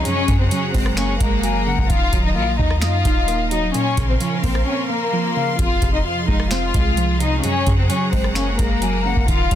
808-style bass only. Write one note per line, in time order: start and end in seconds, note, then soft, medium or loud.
0.28 0.50 F#2 loud
0.74 1.19 F#1 loud
1.20 1.76 F#1 loud
1.78 1.89 F1 loud
1.90 2.12 D#1 loud
2.13 2.37 D#1 loud
2.36 2.58 A#1 loud
2.59 2.84 D#2 loud
2.82 3.04 F#2 loud
3.05 3.72 D#1 loud
3.97 4.20 A#1 loud
4.44 4.66 A#1 loud
5.59 5.81 F1 loud
5.82 6.04 F1 loud
6.28 6.73 F1 loud
6.74 7.41 C2 loud
7.67 7.89 F#2 loud
8.13 8.57 F#1 loud
8.59 9.14 F#1 loud
9.17 9.28 F1 loud
9.28 9.50 D#1 loud
9.51 9.55 D#1 loud